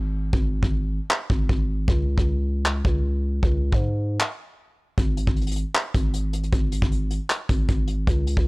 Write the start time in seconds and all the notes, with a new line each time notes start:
Already playing: G#1
0.33 G#1, kick
0.63 G#1, kick
1.11 clap
1.30 G#1, kick
1.49 G#1, kick
1.88 C#2, kick
2.18 C#2, kick
2.66 clap
2.85 C#2, kick
3.43 C#2, kick
3.72 G#2, kick
4.20 clap
4.98 G#1, kick, closed hi-hat
5.17 closed hi-hat
5.27 G#1, kick
5.36 closed hi-hat
5.42 closed hi-hat
5.47 closed hi-hat
5.51 closed hi-hat
5.56 closed hi-hat
5.75 clap, closed hi-hat
5.94 G#1, kick, closed hi-hat
6.14 closed hi-hat
6.33 closed hi-hat
6.43 closed hi-hat
6.53 G#1, kick, closed hi-hat
6.72 closed hi-hat
6.82 G#1, kick
6.92 closed hi-hat
7.11 closed hi-hat
7.30 clap, closed hi-hat
7.49 G#1, kick, closed hi-hat
7.68 G#1, kick, closed hi-hat
7.88 closed hi-hat
8.07 C#2, kick, closed hi-hat
8.27 closed hi-hat
8.37 C#2, kick